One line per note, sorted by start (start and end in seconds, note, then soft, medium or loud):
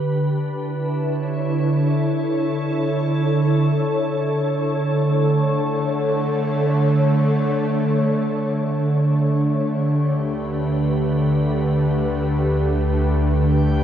0.00 13.84 D3 medium
0.00 13.84 D4 medium
0.00 0.72 G4 medium
0.00 0.87 B4 medium
0.58 5.13 E4 medium
0.91 10.16 C#5 medium
1.53 9.61 A4 medium
4.19 8.81 D3 medium
4.19 8.80 A3 medium
8.81 13.84 D2 medium
8.81 13.84 D3 medium
8.81 13.84 A3 medium
9.74 13.84 G4 medium
10.13 13.84 B4 medium
13.37 13.84 G5 medium
13.37 13.84 G6 medium